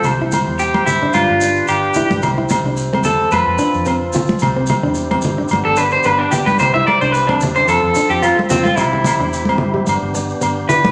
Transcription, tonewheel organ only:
0.04 1.13 E4 medium
0.04 1.13 G4 medium
0.04 1.13 C5 medium
1.14 2.22 D4 medium
1.14 3.30 G4 medium
1.14 2.22 B4 medium
2.22 4.39 C4 medium
2.22 3.31 E4 medium
3.32 4.41 F4 medium
3.32 4.40 A4 medium
4.41 5.50 C4 medium
4.41 5.50 E4 medium
4.41 5.50 G4 medium
5.52 6.59 B3 medium
5.52 6.60 D4 medium
5.52 7.68 G4 medium
6.61 8.77 C4 medium
6.61 7.69 E4 medium
7.69 8.77 F4 medium
7.69 8.78 A4 medium
8.78 9.86 C4 medium
8.78 9.87 E4 medium
8.78 10.92 G4 medium
9.86 10.92 B3 medium
9.86 10.92 D4 medium

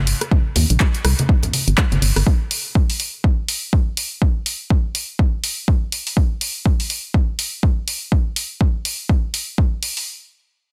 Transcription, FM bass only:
0.00 0.14 G1 medium
0.56 0.65 D#2 medium
0.70 0.77 A#1 medium
1.05 1.14 C2 medium
1.68 1.74 G1 loud
1.92 1.99 G1 loud
2.02 2.12 G1 loud
2.16 2.23 G1 medium

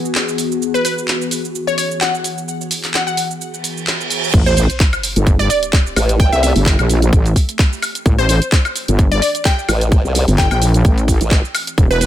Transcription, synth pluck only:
0.74 0.81 B4 medium
0.85 0.93 B4 medium
1.67 1.74 C#5 medium
1.78 1.86 C#5 medium
2.01 2.15 F#5 medium
2.94 3.02 F#5 medium
3.07 3.14 F#5 medium
4.46 4.53 C5 medium
4.57 4.65 C5 medium
5.39 5.46 D5 medium
5.50 5.58 D5 medium
6.20 6.30 G5 medium
6.33 6.39 E5 medium
6.43 6.51 E5 medium
8.19 8.25 C5 medium
8.29 8.37 C5 medium
9.12 9.18 D5 medium
9.22 9.30 D5 medium
9.45 9.59 G5 loud
10.38 10.46 G5 medium
10.51 10.58 G5 medium
11.91 11.97 B4 medium
12.01 12.06 B4 medium

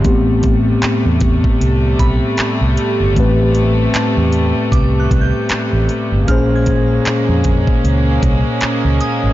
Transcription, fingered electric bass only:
0.05 0.75 A1 loud
0.83 muted fingered electric bass stroke soft
1.06 1.40 E2 medium
1.61 1.96 C2 loud
2.00 2.20 B1 medium
2.39 muted fingered electric bass stroke soft
2.61 2.76 C2 medium
3.00 3.15 G1 medium
3.17 3.86 A1 loud
3.94 muted fingered electric bass stroke soft
4.17 4.52 E2 medium
4.72 5.07 C2 medium
5.11 5.31 C2 medium
5.50 muted fingered electric bass stroke medium
5.73 5.87 A1 medium
6.12 6.27 G1 medium
6.28 6.98 A#1 loud
7.06 muted fingered electric bass stroke soft
7.29 7.64 F2 medium
7.84 8.19 C#2 loud
8.23 8.43 C2 medium
8.62 muted fingered electric bass stroke soft
8.84 8.99 C#2 medium
9.24 9.33 G#1 medium

